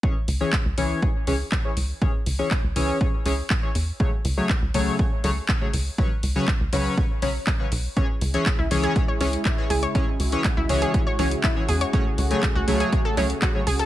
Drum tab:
HH |--o---o---o---o-|--o---o---o---o-|--o---o---o---o-|--o---o---o---o-|
CP |----x-------x---|----x-------x---|----x-------x---|----x-------x---|
BD |o---o---o---o---|o---o---o---o---|o---o---o---o---|o---o---o---o---|

HH |x-oxx-oxx-oxx-ox|x-oxx-oxx-oxx-ox|x-oxx-oxx-oxx-ox|
CP |----x-------x---|----x-------x---|----x-------x---|
BD |o---o---o---o---|o---o---o---o---|o---o---o---o---|